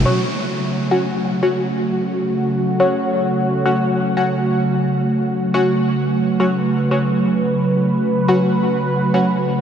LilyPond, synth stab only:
\new Staff \with { instrumentName = "Synth stab" } { \time 4/4 \key fis \minor \tempo 4 = 175 <fis cis' fis'>8 r2 <fis cis' fis'>8 r4 | <fis cis' fis'>8 r2. r8 | <fis cis' fis'>8 r2 <fis cis' fis'>8 r4 | <fis cis' fis'>8 r2. r8 |
<fis cis' fis'>8 r2 <fis cis' fis'>8 r4 | <fis cis' fis'>8 r2. r8 | <fis cis' fis'>8 r2 <fis cis' fis'>8 r4 | }